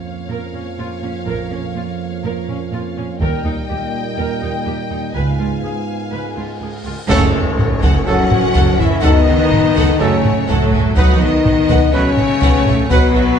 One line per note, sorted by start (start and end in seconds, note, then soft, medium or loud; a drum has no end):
0.00 3.17 F2 soft
0.00 3.17 F3 soft
0.00 3.18 A#3 soft
0.00 3.18 C#4 soft
0.00 3.18 C#5 soft
0.00 3.18 F5 soft
0.30 0.38 A#2 soft
0.30 0.53 A#4 soft
0.54 0.61 A#2 soft
0.54 0.62 C#4 soft
0.78 0.86 A#2 soft
0.78 0.87 F4 soft
1.03 1.11 A#2 soft
1.03 1.12 C#4 soft
1.27 1.50 A#1 soft
1.27 1.35 A#2 soft
1.27 1.50 A#4 soft
1.51 1.59 A#2 soft
1.51 1.60 C#4 soft
1.75 1.83 A#2 soft
1.75 1.84 F4 soft
2.24 2.32 A#2 medium
2.24 2.47 A#4 soft
2.48 2.57 A#2 soft
2.48 2.56 C#4 soft
2.73 2.81 A#2 soft
2.73 2.81 F4 soft
2.97 3.06 A#2 soft
2.97 3.05 C#4 soft
3.21 3.30 D#2 medium
3.21 3.44 D#2 soft
3.21 5.12 A#2 soft
3.21 5.12 G3 soft
3.21 5.12 A#3 soft
3.21 5.16 D#4 soft
3.21 3.44 A#4 medium
3.21 5.12 D#5 medium
3.21 5.12 G5 medium
3.21 taiko soft
3.45 3.54 D#2 soft
3.45 3.53 D#4 soft
3.70 3.78 D#2 soft
3.70 3.78 G4 soft
4.18 4.27 D#2 soft
4.18 4.41 A#4 soft
4.42 4.51 D#2 soft
4.42 4.50 D#4 soft
4.66 4.75 D#2 soft
4.66 4.74 G4 soft
4.91 5.00 D#2 soft
4.91 4.99 D#4 soft
5.14 5.38 C#2 soft
5.14 5.24 C#2 soft
5.14 6.82 G#2 soft
5.14 6.82 G#3 soft
5.14 6.85 B3 soft
5.14 6.85 F4 soft
5.14 5.38 B4 soft
5.14 6.90 F5 soft
5.14 6.90 G#5 soft
5.14 cymbal swell soft
5.39 5.48 C#2 soft
5.39 5.47 F4 soft
5.64 5.72 C#2 soft
5.64 5.72 G#4 soft
6.12 6.20 C#2 soft
6.12 6.36 B4 soft
6.37 6.45 C#2 soft
6.37 6.45 F4 soft
6.61 6.69 C#2 soft
6.61 6.70 G#4 soft
6.86 6.94 C#2 soft
6.86 6.94 F4 soft
7.08 7.33 F#1 loud
7.08 8.03 C#3 loud
7.08 7.32 C#3 medium
7.08 7.32 F#3 medium
7.08 8.03 A3 loud
7.08 8.03 C#4 loud
7.08 7.32 A4 loud
7.08 8.03 C#5 loud
7.08 7.32 F#5 loud
7.08 taiko loud
7.08 tam-tam medium
7.08 sub drop medium
7.34 7.43 F#1 medium
7.34 7.42 G#4 medium
7.34 7.42 E5 medium
7.58 7.67 F#1 medium
7.58 7.66 A4 medium
7.58 7.66 F#5 medium
7.58 taiko low-mid medium
7.82 7.91 F#1 medium
7.82 8.05 A4 medium
7.82 8.05 F#5 medium
7.82 taiko medium
8.06 8.15 F#1 medium
8.06 8.24 C#3 medium
8.06 8.24 F#3 medium
8.06 8.78 F#3 medium
8.06 8.79 C#4 medium
8.06 8.78 F#4 medium
8.06 8.14 G#4 medium
8.06 8.24 A4 medium
8.06 8.14 E5 medium
8.06 8.80 F#5 loud
8.29 8.39 F#1 medium
8.29 8.37 A4 medium
8.29 8.38 F#5 medium
8.29 taiko low-mid medium
8.55 8.64 F#1 medium
8.55 8.78 A4 medium
8.55 8.78 F#5 medium
8.55 taiko medium
8.79 8.88 F#1 medium
8.79 9.04 E3 medium
8.79 9.04 C#4 medium
8.79 9.04 E4 loud
8.79 8.87 G#4 medium
8.79 8.87 E5 medium
8.79 9.04 E5 medium
8.79 taiko low-mid medium
9.02 9.12 F#1 medium
9.02 9.20 C#3 medium
9.02 9.98 D#3 loud
9.02 9.20 F#3 medium
9.02 9.99 B3 loud
9.02 10.00 D#4 loud
9.02 9.26 A4 medium
9.02 9.21 A4 medium
9.02 9.99 D#5 loud
9.02 9.25 F#5 loud
9.02 taiko loud
9.28 9.36 F#1 medium
9.28 9.36 G#4 medium
9.28 9.36 E5 medium
9.52 9.60 F#1 medium
9.52 9.61 A4 medium
9.52 9.60 F#5 medium
9.52 taiko low-mid medium
9.76 9.84 F#1 medium
9.76 9.99 A4 medium
9.76 9.99 F#5 loud
9.76 taiko medium
10.00 10.08 F#1 medium
10.00 10.17 C#3 medium
10.00 10.49 C#3 medium
10.00 10.17 F#3 medium
10.00 10.48 A3 medium
10.00 10.49 C#4 loud
10.00 10.09 G#4 medium
10.00 10.17 A4 medium
10.00 10.50 C#5 medium
10.00 10.08 E5 medium
10.24 10.32 F#1 medium
10.24 10.33 A4 medium
10.24 10.33 F#5 medium
10.24 taiko low-mid medium
10.48 10.56 F#1 medium
10.48 10.96 A2 medium
10.48 10.97 F#3 medium
10.48 10.97 A3 loud
10.48 10.72 A4 medium
10.48 10.98 A4 medium
10.48 10.71 F#5 medium
10.48 taiko medium
10.73 10.81 F#1 medium
10.73 10.82 G#4 medium
10.73 10.82 E5 medium
10.73 taiko low-mid soft
10.96 11.05 B1 medium
10.96 11.14 B2 medium
10.96 11.21 F#3 loud
10.96 11.14 F#3 medium
10.96 11.21 D#4 medium
10.96 11.21 F#4 loud
10.96 11.20 B4 loud
10.96 11.14 B4 medium
10.96 11.19 F#5 medium
10.96 11.21 F#5 loud
10.96 taiko loud
11.20 11.29 B1 medium
11.20 11.94 D#3 loud
11.20 11.94 B3 medium
11.20 11.92 D#4 loud
11.20 11.28 A4 medium
11.20 11.93 D#5 medium
11.20 11.29 E5 medium
11.45 11.54 B1 medium
11.45 11.54 B4 medium
11.45 11.54 F#5 medium
11.45 taiko low-mid medium
11.69 11.77 B1 loud
11.69 11.92 B4 medium
11.69 11.92 F#5 medium
11.69 taiko medium
11.92 12.01 B1 medium
11.92 12.10 B2 medium
11.92 12.89 C#3 medium
11.92 12.10 F#3 medium
11.92 12.91 A3 medium
11.92 12.90 C#4 loud
11.92 12.01 A4 medium
11.92 12.11 B4 medium
11.92 12.91 C#5 loud
11.92 12.00 E5 medium
12.17 12.26 B1 medium
12.17 12.25 B4 medium
12.17 12.25 F#5 medium
12.17 taiko low-mid medium
12.42 12.51 B1 medium
12.42 12.65 B4 medium
12.42 12.65 F#5 loud
12.42 taiko medium
12.66 12.75 B1 medium
12.66 12.74 A4 medium
12.66 12.75 E5 medium
12.66 taiko low-mid medium
12.89 12.99 B1 medium
12.89 13.39 B2 loud
12.89 13.08 B2 medium
12.89 13.39 F#3 loud
12.89 13.08 F#3 medium
12.89 13.39 B3 loud
12.89 13.08 B4 medium
12.89 13.13 B4 loud
12.89 13.39 B4 loud
12.89 13.13 F#5 loud
12.89 taiko loud
13.15 13.23 B1 medium
13.15 13.23 A4 medium
13.15 13.24 E5 medium